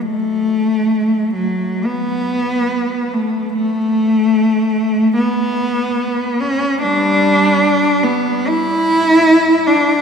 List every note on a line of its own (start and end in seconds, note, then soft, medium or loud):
0.02 1.34 A3 medium
1.34 1.85 F#3 medium
1.85 3.11 B3 medium
3.13 3.52 A3 medium
3.54 5.13 A3 medium
5.17 6.40 B3 medium
6.41 6.81 C#4 medium
6.82 8.00 G3 medium
6.82 8.01 D4 medium
8.03 8.49 B3 medium
8.48 9.67 E4 medium
9.67 10.02 D4 medium